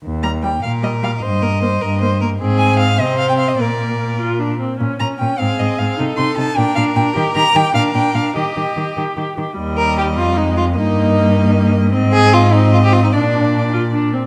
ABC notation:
X:1
M:6/8
L:1/16
Q:3/8=101
K:Eb
V:1 name="Violin"
z2 b2 g2 f2 e2 f2 | e8- e2 z2 | z2 a2 f2 e2 f g f e | d6 z6 |
z2 b2 g2 f2 e2 f2 | z2 c'2 =a2 g2 f2 g2 | z2 b2 g2 f2 g2 f2 | e6 z6 |
e12 | e12 | e6 e6 | d8- d2 z2 |]
V:2 name="Violin"
z6 B6 | c2 B2 c2 B2 c2 B2 | A6 c6 | B8- B z3 |
z6 A6 | =A6 B6- | B6 B6 | G8- G z3 |
z2 B2 G2 F2 E2 F2 | E8- E2 z2 | z2 A2 F2 E2 F G F E | D6 z6 |]
V:3 name="Viola"
z2 G,2 G,2 z2 G,2 G,2 | z2 B,2 B,2 z2 B,2 B,2 | C6 C6 | B,6 F2 D2 C2 |
_D2 D2 D2 C2 C2 C2 | E2 E2 E2 D2 D2 D2 | G2 G2 G2 D2 D2 D2 | G2 G2 G2 G2 G2 G2 |
G,8 A,4 | B,12 | C6 C6 | D6 F2 D2 C2 |]
V:4 name="Cello" clef=bass
E,,6 B,,6 | G,,6 G,,6 | A,,6 C,6 | B,,8- B,,2 z2 |
B,,2 B,,2 B,,2 A,,2 A,,2 A,,2 | C,2 C,2 C,2 B,,2 B,,2 B,,2 | E,2 E,2 E,2 B,,2 B,,2 B,,2 | E,2 E,2 E,2 E,2 E,2 E,2 |
E,,6 F,,6 | G,,12 | A,,12 | B,,8- B,,2 z2 |]